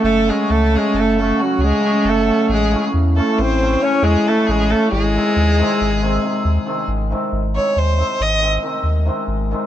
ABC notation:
X:1
M:11/8
L:1/8
Q:1/4=136
K:none
V:1 name="Violin"
A ^G A G A A ^F G2 A2 | ^G2 z A ^B2 ^c G A G A | ^G8- G z2 | z ^c ^B2 ^d z6 |]
V:2 name="Alto saxophone"
A, ^G, A, G, A, A, ^F, G,2 A,2 | ^G,2 z A, ^B,2 ^C G, A, G, A, | ^G,8- G, z2 | z8 z3 |]
V:3 name="Hammered dulcimer" clef=bass
z [^C,^F,A,^C] z [C,F,A,C] z [C,F,A,C] [C,F,A,C] z [C,F,A,C] z [C,F,A,C] | z [^C,E,A,^C] z [C,E,A,C] z [C,E,A,C] [C,E,A,C] z [C,E,A,C] z [C,E,A,C] | z [^B,,^D,^G,^B,] z [B,,D,G,B,] z [B,,D,G,B,] [B,,D,G,B,] z [B,,D,G,B,] z [B,,D,G,B,] | z [^B,,^D,^G,^B,] z [B,,D,G,B,] z [B,,D,G,B,] [B,,D,G,B,] z [B,,D,G,B,] z [B,,D,G,B,] |]
V:4 name="Sub bass" clef=bass
^F,,,2 ^C,,2 F,,,3 C,, z F,,,2 | A,,,2 E,,2 A,,,3 E,, z A,,,2 | ^G,,,2 ^D,,2 G,,,3 D,, z G,,,2 | ^G,,,2 ^D,,2 G,,,3 D,,2 G,,,2 |]